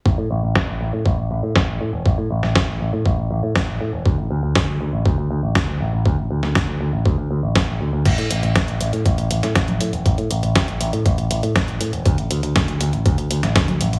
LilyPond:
<<
  \new Staff \with { instrumentName = "Picked electric bass" } { \clef bass \time 4/4 \key d \lydian \tempo 4 = 120 a,,16 a,16 a,,16 a,,16 a,,16 a,,16 a,,16 a,16 a,,16 a,,16 a,,16 a,16 a,,16 a,,16 a,16 e,,16 | a,,16 a,16 a,,16 a,,16 a,,16 a,,16 a,,16 a,16 a,,16 a,,16 a,,16 a,16 a,,16 a,,16 a,16 e,,16 | d,16 a,,16 d,16 d,16 d,16 d,16 d,16 a,,16 d,16 d,16 d,16 a,,16 d,16 d,16 a,,16 a,,16 | d,16 a,,16 d,16 d,16 d,16 d,16 d,16 a,,16 d,16 d,16 d,16 a,,16 a,,16 a,,16 d,16 d,16 |
a,,16 a,16 a,,16 a,,16 a,,16 a,,16 a,,16 a,16 a,,16 a,,16 a,,16 a,16 a,,16 a,,16 a,16 e,,16 | a,,16 a,16 a,,16 a,,16 a,,16 a,,16 a,,16 a,16 a,,16 a,,16 a,,16 a,16 a,,16 a,,16 a,16 e,,16 | d,16 a,,16 d,16 d,16 d,16 d,16 d,16 a,,16 d,16 d,16 d,16 a,,16 d,16 d,16 a,,16 a,,16 | }
  \new DrumStaff \with { instrumentName = "Drums" } \drummode { \time 4/4 bd4 <bd sn>4 bd4 <bd sn>4 | bd8. sn16 <bd sn>4 bd4 <bd sn>4 | bd4 <bd sn>4 bd4 <bd sn>4 | bd8. sn16 <bd sn>4 bd4 <bd sn>4 |
<cymc hh bd>16 hh16 hh16 hh16 <hh bd sn>16 hh16 hh16 hh16 <hh bd>16 hh16 hh16 <hh sn>16 <hh bd sn>16 <cgho hh>16 hh16 hh16 | <hh bd>16 hh16 hh16 hh16 <hh bd sn>16 hh16 hh16 hh16 <hh bd>16 hh16 hh16 hh16 <hh bd sn>16 hh16 hh16 hh16 | <hh bd>16 hh16 hh16 hh16 <hh bd sn>16 hh16 hh16 hh16 <hh bd>16 hh16 hh16 <hh sn>16 <hh bd sn>16 <cgho hh>16 hh16 hh16 | }
>>